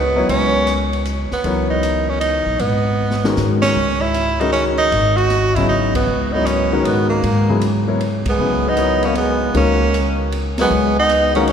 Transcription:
Already playing: upright bass C#2, tenor saxophone B3
0.16 grand piano F#3 B3 E4 A#4 C#5
0.29 upright bass C#2, tenor saxophone C#4, ride
0.67 hi-hat pedal, ride
0.93 ride
1.05 hi-hat pedal, ride
1.31 tenor saxophone B3, muted upright bass stroke, snare
1.44 upright bass C#2, grand piano E3 F#3 B3 A#4 C#5, ride
1.70 tenor saxophone D#4
1.83 hi-hat pedal, ride
2.09 tenor saxophone C#4
2.20 tenor saxophone D#4, ride
2.46 upright bass B1
2.59 upright bass G#1, tenor saxophone B3, ride
3.11 snare
3.24 grand piano D#3 G#3 C#4 F#4 A#4, snare
3.36 upright bass G#2, snare, hi-hat pedal
3.62 tenor saxophone C#4, snare, ride
3.76 upright bass C#2
4.01 tenor saxophone E4
4.14 hi-hat pedal, ride
4.40 grand piano D#3 G#3 C#4 F#4 A#4, tenor saxophone D#4, ride
4.52 tenor saxophone C#4, ride
4.78 tenor saxophone D#4
4.92 upright bass G#1, ride
5.17 tenor saxophone F#4, ride
5.30 snare, hi-hat pedal, ride
5.55 grand piano C#3 F#3 B3 E4 G#4, tenor saxophone E4, kick, ride
5.69 tenor saxophone D#4
5.95 tenor saxophone B3, kick, ride
6.07 upright bass C#2
6.33 grand piano F#3 B3 E4 A#4 C#5, tenor saxophone D#4
6.45 tenor saxophone C#4, hi-hat pedal, ride
6.72 grand piano D#3 G#3 C#4 F#4 A#4
6.84 upright bass G#2, tenor saxophone B3, ride
7.10 tenor saxophone A#3
7.23 upright bass G#2, ride
7.49 grand piano C#3 F#3 B3 E4 G#4
7.61 hi-hat pedal, ride
7.87 grand piano F#3 B3 E4 A#4 C#5
8.01 ride
8.25 upright bass C2, trombone G#3, tenor saxophone B3, kick, ride
8.38 upright bass C#2, grand piano C#3 F#3 B3 E4 G#4
8.67 trombone B3, tenor saxophone D#4
8.77 grand piano F#3 B3 E4 A#4 C#5, hi-hat pedal, ride
9.03 trombone A#3, tenor saxophone C#4, ride
9.15 trombone G#3, tenor saxophone B3, ride
9.54 upright bass C#2, grand piano D#3 G#3 C#4 F#4 A#4, trombone A#3, tenor saxophone C#4, ride
9.94 hi-hat pedal, ride
10.32 ride
10.58 grand piano F#3 B3 E4 A#4 C#5, trombone G#3, tenor saxophone B3, snare, ride
10.70 upright bass C#2
10.99 trombone B3, tenor saxophone D#4
11.09 hi-hat pedal, ride
11.35 grand piano D#3 G#3 C#4 F#4 A#4, trombone A#3, tenor saxophone C#4, ride
11.47 tenor saxophone C#4, ride

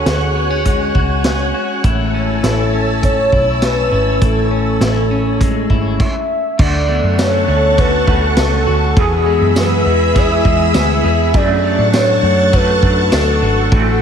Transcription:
Already playing: clean electric guitar C#4, handpan F#4, string machine C#5 F#5 G#5 F#6
0.06 picked electric bass D2, clean electric guitar F#4, soft synth lead G#4, snare, closed hi-hat
0.36 clean electric guitar B3
0.50 clean electric guitar C#4
0.65 clean electric guitar G#3, kick, closed hi-hat
0.95 picked electric bass C#2, clean electric guitar F#4, kick
1.24 clean electric guitar C#4, snare, closed hi-hat
1.54 clean electric guitar F#4
1.84 picked electric bass A1, clean electric guitar A2 E4, string machine A5 E6, kick, closed hi-hat
2.14 clean electric guitar C#4
2.43 picked electric bass A1, clean electric guitar E4, soft synth lead A4, snare, closed hi-hat
2.74 clean electric guitar C#4
3.03 soft synth lead C#5, kick, closed hi-hat
3.32 picked electric bass B1, clean electric guitar E4, kick
3.62 clean electric guitar C#4, soft synth lead B4, snare, closed hi-hat
3.91 picked electric bass G#1, handpan C#4, clean electric guitar E4
4.21 picked electric bass A1, clean electric guitar A2 E4, soft synth lead A4, kick, closed hi-hat
4.51 clean electric guitar C#4
4.81 picked electric bass A1, clean electric guitar E4, snare, closed hi-hat
5.10 handpan C#4, clean electric guitar C#4
5.41 clean electric guitar G#3, kick, closed hi-hat
5.70 picked electric bass G#1, clean electric guitar E4, kick
6.00 soft synth lead E5, kick, crash
6.58 picked electric bass D2, clean electric guitar D3 A3, string machine A4 F#5 A5 C#6, soft synth lead D5, kick, crash
6.63 clean electric guitar F#4
6.89 clean electric guitar A3, handpan B3
7.04 picked electric bass F#2
7.18 clean electric guitar C#4, soft synth lead C#5, snare, ride, tambourine
7.48 picked electric bass D2, clean electric guitar A3
7.78 clean electric guitar D3 A3 C#4 F#4, soft synth lead B4, kick, ride
8.07 picked electric bass D2, clean electric guitar A3 C#4 F#4, kick
8.37 picked electric bass C#2, clean electric guitar C#4, soft synth lead A4, snare, ride, tambourine
8.67 picked electric bass D2, clean electric guitar F#4, handpan F#4
8.96 clean electric guitar E2 B2 E3 G#3 B3, picked electric bass E2, string machine G#4 E5 B5 E6, soft synth lead G#4, kick, ride
9.00 clean electric guitar G#4
9.26 clean electric guitar G#3
9.41 picked electric bass F#2
9.56 clean electric guitar B3, soft synth lead B4, snare, ride, tambourine
9.85 picked electric bass E2, clean electric guitar G#3
10.15 clean electric guitar E3 G#3 B3 G#4, handpan E4, soft synth lead E5, kick, ride
10.45 picked electric bass E2, clean electric guitar E3 G#3 B3 G#4, kick
10.74 picked electric bass D2, clean electric guitar B3, soft synth lead E5, snare, ride, tambourine
11.04 picked electric bass E2, clean electric guitar G#4
11.34 clean electric guitar F#2 F#3 A3 D4, picked electric bass F#2, string machine A4 F#5 A5 C#6, soft synth lead D5, kick, ride
11.39 clean electric guitar F#4
11.64 clean electric guitar A3
11.79 picked electric bass A2
11.93 clean electric guitar D4, soft synth lead C#5, snare, ride, tambourine
12.23 picked electric bass F#2, clean electric guitar A3
12.52 clean electric guitar F#3 A3 D4 F#4, soft synth lead B4, kick, ride
12.82 picked electric bass F#2, clean electric guitar F#3 A3 D4 F#4, handpan D4, kick
13.03 handpan F#4
13.12 picked electric bass D2, clean electric guitar D4, soft synth lead A4, snare, ride, tambourine
13.23 handpan A4
13.42 picked electric bass G#1, clean electric guitar F#4
13.70 picked electric bass A1, clean electric guitar A2 E3 A3 C4, soft synth lead F#4, string machine F#5 C6 E6, kick, ride
13.75 clean electric guitar F#4

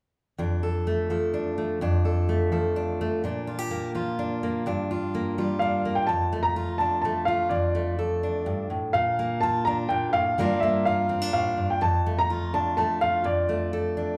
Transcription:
0.38 steel-string acoustic guitar F2 D4
0.63 steel-string acoustic guitar A4
0.87 steel-string acoustic guitar A3
1.10 steel-string acoustic guitar F3 A4
1.34 steel-string acoustic guitar D4
1.58 steel-string acoustic guitar A3
1.81 steel-string acoustic guitar F2 D4
2.05 steel-string acoustic guitar A4
2.29 steel-string acoustic guitar A3
2.52 steel-string acoustic guitar F3 A4
2.76 steel-string acoustic guitar D4
3.01 steel-string acoustic guitar A3
3.24 steel-string acoustic guitar A#2 D4
3.47 steel-string acoustic guitar F4
3.59 steel-string acoustic guitar G4
3.71 steel-string acoustic guitar A#3
3.95 steel-string acoustic guitar F3 F4
4.19 steel-string acoustic guitar D4
4.43 steel-string acoustic guitar A#3
4.66 steel-string acoustic guitar G2 D4
4.91 steel-string acoustic guitar F4
5.15 steel-string acoustic guitar A#3
5.38 steel-string acoustic guitar G3 F4
5.59 steel-string acoustic guitar D4, upright piano F5
5.85 steel-string acoustic guitar A#3
5.95 upright piano G5
6.07 steel-string acoustic guitar F2, upright piano A5
6.32 steel-string acoustic guitar A3
6.43 upright piano A#5
6.56 steel-string acoustic guitar F4
6.78 steel-string acoustic guitar D4, upright piano A5
7.02 steel-string acoustic guitar A3, upright piano A5
7.25 steel-string acoustic guitar F4, upright piano F5
7.50 steel-string acoustic guitar F2, upright piano D5
7.75 steel-string acoustic guitar A3
7.99 steel-string acoustic guitar A4
8.23 steel-string acoustic guitar D4
8.46 steel-string acoustic guitar G2
8.70 steel-string acoustic guitar A2
8.93 steel-string acoustic guitar A#2, upright piano F5
9.19 steel-string acoustic guitar A#3
9.41 steel-string acoustic guitar F4, upright piano A5
9.65 steel-string acoustic guitar D4, upright piano A#5
9.89 steel-string acoustic guitar A#2, upright piano G5
10.13 steel-string acoustic guitar A2, upright piano F5
10.38 steel-string acoustic guitar G2 G3 A#3 D4 F4
10.60 steel-string acoustic guitar A#3, upright piano E5
10.85 steel-string acoustic guitar F4, upright piano F5
11.09 steel-string acoustic guitar C4
11.22 steel-string acoustic guitar D4
11.33 steel-string acoustic guitar A2, upright piano F5
11.57 steel-string acoustic guitar G2
11.70 upright piano G5
11.81 steel-string acoustic guitar F2, upright piano A5
12.06 steel-string acoustic guitar A3
12.19 upright piano A#5
12.30 steel-string acoustic guitar F4
12.54 steel-string acoustic guitar D4, upright piano A5
12.77 steel-string acoustic guitar A3, upright piano A5
13.01 steel-string acoustic guitar F4, upright piano F5
13.24 steel-string acoustic guitar F2, upright piano D5
13.49 steel-string acoustic guitar A3
13.73 steel-string acoustic guitar A4
13.97 steel-string acoustic guitar D4

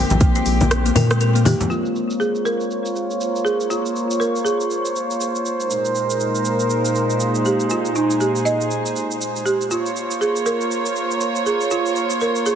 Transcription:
Already playing: string section G#3 C4 G4
0.10 analog synth bass A#1, closed hi-hat, mid tom, low conga, shaker
0.21 kalimba A#3, kick, closed hi-hat, shaker
0.35 kalimba F4, closed hi-hat, shaker
0.46 analog synth bass A#1, open hi-hat, shaker
0.61 closed hi-hat, high conga, low conga, shaker
0.71 cross-stick, closed hi-hat, shaker
0.86 kalimba A#3, closed hi-hat, shaker
0.95 analog synth bass A#2, kalimba A#4, open hi-hat, mid tom, high conga, shaker
1.11 kalimba G#3, cross-stick, closed hi-hat, shaker
1.21 kalimba A#4, closed hi-hat, shaker
1.35 kalimba A#3, closed hi-hat, shaker
1.45 kalimba C4, marimba G4, open hi-hat, mid tom, high conga, shaker
1.60 closed hi-hat, low conga, shaker
1.70 string section A#3 F4 C5 C#5, marimba F4, shaker
1.85 shaker
1.96 shaker
2.10 shaker
2.20 marimba G#4, shaker
2.35 shaker
2.45 marimba A#4, shaker
2.61 shaker
2.71 shaker
2.86 shaker
2.96 shaker
3.11 shaker
3.21 shaker
3.36 shaker
3.45 marimba G#4, shaker
3.60 shaker
3.70 marimba F4, shaker
3.86 shaker
3.96 shaker
4.11 shaker
4.20 marimba A#4, shaker
4.36 shaker
4.45 marimba G#4, shaker
4.61 shaker
4.71 shaker
4.85 shaker
4.96 shaker
5.11 shaker
5.21 shaker
5.35 shaker
5.46 shaker
5.60 shaker
5.70 string section A#2 G#3 D#4 A#4, shaker
5.85 shaker
5.95 shaker
6.10 shaker
6.20 shaker
6.35 shaker
6.45 shaker
6.60 shaker
6.70 shaker
6.85 shaker
6.95 shaker
7.10 shaker
7.20 shaker
7.35 shaker
7.45 marimba G4, shaker
7.60 shaker
7.70 marimba F4, string section G#4, shaker
7.85 shaker
7.96 marimba D#4, shaker
8.11 shaker
8.21 marimba G4, shaker
8.36 shaker
8.45 marimba D#5, shaker
8.61 shaker
8.71 shaker
8.86 shaker
8.96 shaker
9.11 shaker
9.21 shaker
9.36 shaker
9.46 marimba G4, shaker
9.61 shaker
9.71 string section A#3 F4 C5 C#5, marimba F4, shaker
9.86 shaker
9.96 shaker
10.11 shaker
10.21 marimba G#4, shaker
10.36 shaker
10.46 marimba A#4, shaker
10.61 shaker
10.71 shaker
10.86 shaker
10.96 shaker
11.11 shaker
11.21 shaker
11.36 shaker
11.46 marimba G#4, shaker
11.61 shaker
11.71 marimba F4, shaker
11.86 shaker
11.96 shaker
12.10 shaker
12.21 marimba A#4, shaker
12.36 shaker
12.46 marimba G#4, shaker

